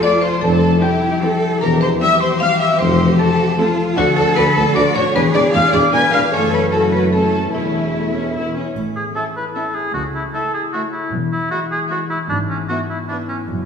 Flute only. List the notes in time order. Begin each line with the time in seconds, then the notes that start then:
0.04 D6
0.23 C6
0.42 A5
0.83 G5
1.60 A#5
1.82 C6
2.02 E6
2.20 C6
2.42 F6
2.61 E6
2.80 C6
3.18 A5
3.96 F#5
4.16 A5
4.36 B5
4.56 A5
4.75 D6
4.96 C#6
5.15 B5
5.36 D6
5.55 F6
5.74 D6
5.95 G#6
6.13 F6
6.32 C#6
6.53 B5
6.72 A5
6.91 B5
7.12 A5
7.52 E5